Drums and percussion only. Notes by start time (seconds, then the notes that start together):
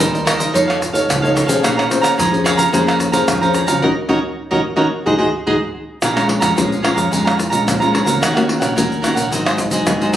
0.00 pandeiro, shaker, surdo
0.15 pandeiro, shaker
0.27 pandeiro, tamborim, shaker
0.40 pandeiro, shaker
0.55 pandeiro, shaker, surdo
0.70 pandeiro, tamborim, shaker
0.82 pandeiro, shaker, surdo
0.95 pandeiro, shaker
1.10 pandeiro, tamborim, shaker, surdo
1.25 pandeiro, shaker
1.37 pandeiro, shaker
1.49 pandeiro, shaker
1.64 pandeiro, tamborim, shaker, surdo
1.79 pandeiro, tamborim, shaker
1.91 pandeiro, shaker
2.04 pandeiro, tamborim, shaker
2.19 pandeiro, shaker, surdo
2.34 pandeiro, shaker
2.46 pandeiro, tamborim, shaker
2.59 pandeiro, shaker
2.74 pandeiro, shaker, surdo
2.88 pandeiro, tamborim, shaker
3.00 pandeiro, shaker, surdo
3.13 pandeiro, shaker
3.28 pandeiro, tamborim, shaker, surdo
3.43 pandeiro, shaker
3.54 pandeiro, shaker
3.68 pandeiro, shaker
3.83 surdo
4.09 surdo
4.52 surdo
4.77 surdo
5.07 surdo
5.19 surdo
5.48 surdo
6.02 pandeiro, tamborim, shaker, surdo
6.17 pandeiro, tamborim, shaker
6.29 pandeiro
6.42 pandeiro, tamborim, shaker
6.58 pandeiro, shaker, surdo
6.72 pandeiro, shaker
6.85 pandeiro, tamborim
6.98 pandeiro, shaker
7.13 pandeiro, shaker, surdo
7.27 pandeiro, tamborim, shaker
7.39 pandeiro, shaker
7.53 pandeiro, shaker
7.68 pandeiro, tamborim, shaker, surdo
7.82 pandeiro, shaker
7.95 pandeiro
8.07 pandeiro, shaker
8.23 pandeiro, tamborim, shaker, surdo
8.37 pandeiro, tamborim, shaker
8.49 pandeiro
8.62 pandeiro, tamborim, shaker
8.78 pandeiro, shaker, surdo
8.92 pandeiro, shaker
9.04 pandeiro, tamborim, shaker
9.17 pandeiro, shaker
9.32 pandeiro, shaker, surdo
9.46 pandeiro, tamborim, shaker
9.58 pandeiro, shaker, surdo
9.71 pandeiro, shaker
9.87 pandeiro, tamborim, shaker, surdo
10.02 pandeiro, shaker
10.13 pandeiro, shaker